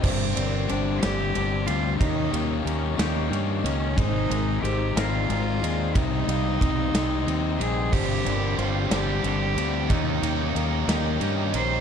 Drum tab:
CC |x-----|------|------|------|
RD |-xxxxx|xxxxxx|xxxxxx|xxxxxx|
SD |---o--|---o--|---o--|---o--|
BD |o-----|o-----|o-----|o-o---|

CC |x-----|------|
RD |-xxxxx|xxxxxx|
SD |---o--|---o--|
BD |o-----|o-----|